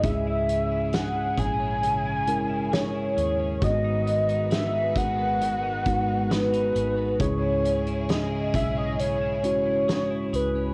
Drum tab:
HH |x-x-x-x-x-x-x-x-|x-xxx-x-x-x-xxx-|x-xxx-x-x-x-x-x-|
SD |----o-------o---|----o-------o---|----o-------o---|
BD |o-----o---------|o-----o---o-----|o-----o---------|